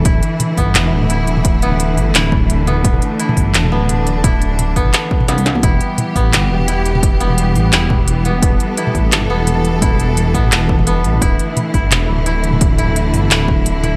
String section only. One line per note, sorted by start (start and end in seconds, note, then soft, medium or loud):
0.00 5.59 E3 medium
0.05 5.59 D3 medium
0.05 5.59 A3 medium
0.05 2.82 E4 medium
2.85 5.61 D4 medium
5.64 13.97 E3 medium
5.64 11.18 G3 medium
5.64 11.18 B3 medium
5.64 8.40 G4 medium
8.43 11.19 A4 loud
11.21 13.97 D3 medium
11.21 13.97 A3 medium
11.21 13.97 E4 medium